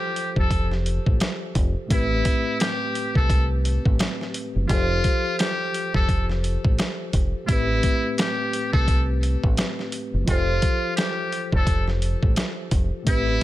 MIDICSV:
0, 0, Header, 1, 5, 480
1, 0, Start_track
1, 0, Tempo, 697674
1, 1311, Time_signature, 4, 2, 24, 8
1, 9242, End_track
2, 0, Start_track
2, 0, Title_t, "Muted trumpet"
2, 0, Program_c, 0, 59
2, 0, Note_on_c, 0, 67, 85
2, 225, Note_off_c, 0, 67, 0
2, 269, Note_on_c, 0, 69, 82
2, 477, Note_off_c, 0, 69, 0
2, 1321, Note_on_c, 0, 64, 104
2, 1768, Note_off_c, 0, 64, 0
2, 1790, Note_on_c, 0, 67, 88
2, 2148, Note_off_c, 0, 67, 0
2, 2176, Note_on_c, 0, 69, 88
2, 2389, Note_off_c, 0, 69, 0
2, 3223, Note_on_c, 0, 65, 109
2, 3679, Note_off_c, 0, 65, 0
2, 3709, Note_on_c, 0, 67, 92
2, 4067, Note_off_c, 0, 67, 0
2, 4094, Note_on_c, 0, 69, 87
2, 4309, Note_off_c, 0, 69, 0
2, 5143, Note_on_c, 0, 64, 105
2, 5599, Note_off_c, 0, 64, 0
2, 5633, Note_on_c, 0, 67, 86
2, 5989, Note_off_c, 0, 67, 0
2, 6005, Note_on_c, 0, 69, 91
2, 6223, Note_off_c, 0, 69, 0
2, 7081, Note_on_c, 0, 65, 107
2, 7528, Note_off_c, 0, 65, 0
2, 7544, Note_on_c, 0, 67, 84
2, 7904, Note_off_c, 0, 67, 0
2, 7950, Note_on_c, 0, 69, 84
2, 8157, Note_off_c, 0, 69, 0
2, 9002, Note_on_c, 0, 64, 107
2, 9242, Note_off_c, 0, 64, 0
2, 9242, End_track
3, 0, Start_track
3, 0, Title_t, "Tine electric piano"
3, 0, Program_c, 1, 4
3, 0, Control_c, 1, 64, 127
3, 0, Note_on_c, 1, 53, 68
3, 0, Note_on_c, 1, 65, 56
3, 0, Note_on_c, 1, 67, 57
3, 0, Note_on_c, 1, 69, 56
3, 0, Note_on_c, 1, 72, 73
3, 1271, Note_off_c, 1, 53, 0
3, 1278, Note_off_c, 1, 65, 0
3, 1281, Note_on_c, 1, 45, 72
3, 1285, Note_off_c, 1, 67, 0
3, 1292, Note_off_c, 1, 69, 0
3, 1294, Note_on_c, 1, 57, 58
3, 1299, Note_off_c, 1, 72, 0
3, 1308, Note_on_c, 1, 60, 60
3, 1320, Control_c, 1, 64, 0
3, 1321, Note_on_c, 1, 67, 57
3, 1335, Note_on_c, 1, 71, 69
3, 1453, Control_c, 1, 64, 127
3, 3188, Note_off_c, 1, 45, 0
3, 3195, Note_off_c, 1, 57, 0
3, 3202, Note_off_c, 1, 60, 0
3, 3207, Note_on_c, 1, 53, 69
3, 3208, Note_off_c, 1, 67, 0
3, 3215, Note_off_c, 1, 71, 0
3, 3221, Note_on_c, 1, 65, 56
3, 3235, Note_on_c, 1, 67, 59
3, 3239, Control_c, 1, 64, 0
3, 3249, Note_on_c, 1, 69, 57
3, 3262, Note_on_c, 1, 72, 74
3, 3368, Control_c, 1, 64, 127
3, 5111, Note_off_c, 1, 53, 0
3, 5118, Note_off_c, 1, 65, 0
3, 5121, Note_on_c, 1, 45, 71
3, 5125, Note_off_c, 1, 67, 0
3, 5132, Note_off_c, 1, 69, 0
3, 5135, Note_on_c, 1, 57, 61
3, 5139, Note_off_c, 1, 72, 0
3, 5149, Note_on_c, 1, 60, 63
3, 5160, Control_c, 1, 64, 0
3, 5162, Note_on_c, 1, 67, 60
3, 5176, Note_on_c, 1, 71, 69
3, 5280, Control_c, 1, 64, 127
3, 7028, Note_off_c, 1, 45, 0
3, 7035, Note_off_c, 1, 57, 0
3, 7042, Note_off_c, 1, 60, 0
3, 7047, Note_on_c, 1, 53, 70
3, 7049, Note_off_c, 1, 67, 0
3, 7056, Note_off_c, 1, 71, 0
3, 7060, Note_on_c, 1, 65, 58
3, 7074, Note_on_c, 1, 67, 56
3, 7079, Control_c, 1, 64, 0
3, 7088, Note_on_c, 1, 69, 57
3, 7102, Note_on_c, 1, 72, 76
3, 7195, Control_c, 1, 64, 127
3, 8951, Note_off_c, 1, 53, 0
3, 8958, Note_off_c, 1, 65, 0
3, 8960, Note_on_c, 1, 45, 70
3, 8965, Note_off_c, 1, 67, 0
3, 8972, Note_off_c, 1, 69, 0
3, 8974, Note_on_c, 1, 57, 58
3, 8979, Note_off_c, 1, 72, 0
3, 8987, Note_on_c, 1, 60, 64
3, 9000, Control_c, 1, 64, 0
3, 9001, Note_on_c, 1, 67, 59
3, 9015, Note_on_c, 1, 71, 69
3, 9113, Control_c, 1, 64, 127
3, 9242, Note_off_c, 1, 45, 0
3, 9242, Note_off_c, 1, 57, 0
3, 9242, Note_off_c, 1, 60, 0
3, 9242, Note_off_c, 1, 67, 0
3, 9242, Note_off_c, 1, 71, 0
3, 9242, End_track
4, 0, Start_track
4, 0, Title_t, "Fingered electric bass"
4, 0, Program_c, 2, 33
4, 252, Note_on_c, 2, 29, 86
4, 672, Note_off_c, 2, 29, 0
4, 735, Note_on_c, 2, 33, 93
4, 821, Note_off_c, 2, 33, 0
4, 1071, Note_on_c, 2, 29, 86
4, 1194, Note_off_c, 2, 29, 0
4, 1313, Note_on_c, 2, 33, 105
4, 1522, Note_off_c, 2, 33, 0
4, 2172, Note_on_c, 2, 36, 87
4, 2592, Note_off_c, 2, 36, 0
4, 2654, Note_on_c, 2, 33, 94
4, 2740, Note_off_c, 2, 33, 0
4, 3135, Note_on_c, 2, 30, 78
4, 3221, Note_off_c, 2, 30, 0
4, 3232, Note_on_c, 2, 29, 96
4, 3442, Note_off_c, 2, 29, 0
4, 4092, Note_on_c, 2, 29, 83
4, 4512, Note_off_c, 2, 29, 0
4, 4574, Note_on_c, 2, 33, 93
4, 4660, Note_off_c, 2, 33, 0
4, 4911, Note_on_c, 2, 29, 88
4, 5033, Note_off_c, 2, 29, 0
4, 5152, Note_on_c, 2, 33, 108
4, 5362, Note_off_c, 2, 33, 0
4, 6012, Note_on_c, 2, 36, 89
4, 6432, Note_off_c, 2, 36, 0
4, 6494, Note_on_c, 2, 33, 96
4, 6580, Note_off_c, 2, 33, 0
4, 6975, Note_on_c, 2, 30, 80
4, 7061, Note_off_c, 2, 30, 0
4, 7072, Note_on_c, 2, 29, 101
4, 7282, Note_off_c, 2, 29, 0
4, 7931, Note_on_c, 2, 29, 85
4, 8352, Note_off_c, 2, 29, 0
4, 8414, Note_on_c, 2, 33, 95
4, 8500, Note_off_c, 2, 33, 0
4, 8750, Note_on_c, 2, 29, 88
4, 8873, Note_off_c, 2, 29, 0
4, 8993, Note_on_c, 2, 33, 99
4, 9202, Note_off_c, 2, 33, 0
4, 9242, End_track
5, 0, Start_track
5, 0, Title_t, "Drums"
5, 112, Note_on_c, 9, 42, 67
5, 181, Note_off_c, 9, 42, 0
5, 250, Note_on_c, 9, 36, 89
5, 319, Note_off_c, 9, 36, 0
5, 348, Note_on_c, 9, 36, 90
5, 350, Note_on_c, 9, 42, 80
5, 417, Note_off_c, 9, 36, 0
5, 419, Note_off_c, 9, 42, 0
5, 492, Note_on_c, 9, 38, 34
5, 561, Note_off_c, 9, 38, 0
5, 592, Note_on_c, 9, 42, 66
5, 661, Note_off_c, 9, 42, 0
5, 732, Note_on_c, 9, 36, 94
5, 801, Note_off_c, 9, 36, 0
5, 828, Note_on_c, 9, 42, 81
5, 834, Note_on_c, 9, 40, 94
5, 837, Note_on_c, 9, 38, 117
5, 897, Note_off_c, 9, 42, 0
5, 903, Note_off_c, 9, 40, 0
5, 906, Note_off_c, 9, 38, 0
5, 1068, Note_on_c, 9, 42, 78
5, 1069, Note_on_c, 9, 36, 91
5, 1137, Note_off_c, 9, 42, 0
5, 1138, Note_off_c, 9, 36, 0
5, 1310, Note_on_c, 9, 36, 120
5, 1311, Note_on_c, 9, 42, 97
5, 1379, Note_off_c, 9, 36, 0
5, 1380, Note_off_c, 9, 42, 0
5, 1548, Note_on_c, 9, 42, 85
5, 1550, Note_on_c, 9, 36, 95
5, 1617, Note_off_c, 9, 42, 0
5, 1619, Note_off_c, 9, 36, 0
5, 1790, Note_on_c, 9, 42, 91
5, 1797, Note_on_c, 9, 40, 96
5, 1800, Note_on_c, 9, 38, 115
5, 1859, Note_off_c, 9, 42, 0
5, 1866, Note_off_c, 9, 40, 0
5, 1869, Note_off_c, 9, 38, 0
5, 2032, Note_on_c, 9, 42, 67
5, 2101, Note_off_c, 9, 42, 0
5, 2170, Note_on_c, 9, 36, 91
5, 2239, Note_off_c, 9, 36, 0
5, 2268, Note_on_c, 9, 36, 95
5, 2270, Note_on_c, 9, 42, 79
5, 2336, Note_off_c, 9, 36, 0
5, 2339, Note_off_c, 9, 42, 0
5, 2512, Note_on_c, 9, 42, 65
5, 2581, Note_off_c, 9, 42, 0
5, 2652, Note_on_c, 9, 36, 96
5, 2721, Note_off_c, 9, 36, 0
5, 2748, Note_on_c, 9, 42, 82
5, 2754, Note_on_c, 9, 40, 93
5, 2757, Note_on_c, 9, 38, 118
5, 2817, Note_off_c, 9, 42, 0
5, 2823, Note_off_c, 9, 40, 0
5, 2826, Note_off_c, 9, 38, 0
5, 2899, Note_on_c, 9, 38, 36
5, 2967, Note_off_c, 9, 38, 0
5, 2988, Note_on_c, 9, 42, 78
5, 3057, Note_off_c, 9, 42, 0
5, 3230, Note_on_c, 9, 36, 117
5, 3230, Note_on_c, 9, 42, 95
5, 3299, Note_off_c, 9, 36, 0
5, 3299, Note_off_c, 9, 42, 0
5, 3468, Note_on_c, 9, 42, 84
5, 3470, Note_on_c, 9, 36, 93
5, 3537, Note_off_c, 9, 42, 0
5, 3539, Note_off_c, 9, 36, 0
5, 3709, Note_on_c, 9, 42, 95
5, 3717, Note_on_c, 9, 40, 98
5, 3720, Note_on_c, 9, 38, 119
5, 3778, Note_off_c, 9, 42, 0
5, 3786, Note_off_c, 9, 40, 0
5, 3789, Note_off_c, 9, 38, 0
5, 3952, Note_on_c, 9, 42, 68
5, 4021, Note_off_c, 9, 42, 0
5, 4089, Note_on_c, 9, 36, 92
5, 4158, Note_off_c, 9, 36, 0
5, 4187, Note_on_c, 9, 36, 96
5, 4190, Note_on_c, 9, 42, 77
5, 4256, Note_off_c, 9, 36, 0
5, 4258, Note_off_c, 9, 42, 0
5, 4332, Note_on_c, 9, 38, 35
5, 4400, Note_off_c, 9, 38, 0
5, 4431, Note_on_c, 9, 42, 66
5, 4500, Note_off_c, 9, 42, 0
5, 4572, Note_on_c, 9, 36, 95
5, 4641, Note_off_c, 9, 36, 0
5, 4668, Note_on_c, 9, 42, 83
5, 4674, Note_on_c, 9, 40, 96
5, 4677, Note_on_c, 9, 38, 120
5, 4737, Note_off_c, 9, 42, 0
5, 4743, Note_off_c, 9, 40, 0
5, 4746, Note_off_c, 9, 38, 0
5, 4908, Note_on_c, 9, 42, 77
5, 4909, Note_on_c, 9, 36, 95
5, 4976, Note_off_c, 9, 42, 0
5, 4977, Note_off_c, 9, 36, 0
5, 5150, Note_on_c, 9, 36, 119
5, 5150, Note_on_c, 9, 42, 102
5, 5219, Note_off_c, 9, 36, 0
5, 5219, Note_off_c, 9, 42, 0
5, 5388, Note_on_c, 9, 42, 82
5, 5390, Note_on_c, 9, 36, 93
5, 5456, Note_off_c, 9, 42, 0
5, 5459, Note_off_c, 9, 36, 0
5, 5629, Note_on_c, 9, 42, 94
5, 5636, Note_on_c, 9, 40, 100
5, 5639, Note_on_c, 9, 38, 122
5, 5698, Note_off_c, 9, 42, 0
5, 5705, Note_off_c, 9, 40, 0
5, 5708, Note_off_c, 9, 38, 0
5, 5872, Note_on_c, 9, 42, 68
5, 5940, Note_off_c, 9, 42, 0
5, 6009, Note_on_c, 9, 36, 96
5, 6078, Note_off_c, 9, 36, 0
5, 6107, Note_on_c, 9, 36, 91
5, 6109, Note_on_c, 9, 42, 79
5, 6176, Note_off_c, 9, 36, 0
5, 6178, Note_off_c, 9, 42, 0
5, 6351, Note_on_c, 9, 42, 67
5, 6419, Note_off_c, 9, 42, 0
5, 6492, Note_on_c, 9, 36, 96
5, 6560, Note_off_c, 9, 36, 0
5, 6587, Note_on_c, 9, 42, 80
5, 6593, Note_on_c, 9, 40, 94
5, 6596, Note_on_c, 9, 38, 120
5, 6656, Note_off_c, 9, 42, 0
5, 6662, Note_off_c, 9, 40, 0
5, 6665, Note_off_c, 9, 38, 0
5, 6737, Note_on_c, 9, 38, 35
5, 6805, Note_off_c, 9, 38, 0
5, 6827, Note_on_c, 9, 42, 75
5, 6896, Note_off_c, 9, 42, 0
5, 7069, Note_on_c, 9, 36, 116
5, 7070, Note_on_c, 9, 42, 100
5, 7138, Note_off_c, 9, 36, 0
5, 7138, Note_off_c, 9, 42, 0
5, 7307, Note_on_c, 9, 42, 82
5, 7310, Note_on_c, 9, 36, 93
5, 7376, Note_off_c, 9, 42, 0
5, 7379, Note_off_c, 9, 36, 0
5, 7548, Note_on_c, 9, 42, 90
5, 7556, Note_on_c, 9, 40, 99
5, 7559, Note_on_c, 9, 38, 117
5, 7617, Note_off_c, 9, 42, 0
5, 7624, Note_off_c, 9, 40, 0
5, 7628, Note_off_c, 9, 38, 0
5, 7791, Note_on_c, 9, 42, 69
5, 7860, Note_off_c, 9, 42, 0
5, 7929, Note_on_c, 9, 36, 94
5, 7998, Note_off_c, 9, 36, 0
5, 8027, Note_on_c, 9, 36, 96
5, 8029, Note_on_c, 9, 42, 80
5, 8096, Note_off_c, 9, 36, 0
5, 8097, Note_off_c, 9, 42, 0
5, 8171, Note_on_c, 9, 38, 37
5, 8239, Note_off_c, 9, 38, 0
5, 8270, Note_on_c, 9, 42, 68
5, 8339, Note_off_c, 9, 42, 0
5, 8411, Note_on_c, 9, 36, 95
5, 8480, Note_off_c, 9, 36, 0
5, 8506, Note_on_c, 9, 42, 81
5, 8512, Note_on_c, 9, 40, 97
5, 8515, Note_on_c, 9, 38, 116
5, 8575, Note_off_c, 9, 42, 0
5, 8581, Note_off_c, 9, 40, 0
5, 8584, Note_off_c, 9, 38, 0
5, 8747, Note_on_c, 9, 42, 76
5, 8748, Note_on_c, 9, 36, 97
5, 8816, Note_off_c, 9, 42, 0
5, 8817, Note_off_c, 9, 36, 0
5, 8990, Note_on_c, 9, 36, 117
5, 8990, Note_on_c, 9, 42, 99
5, 9058, Note_off_c, 9, 36, 0
5, 9059, Note_off_c, 9, 42, 0
5, 9242, End_track
0, 0, End_of_file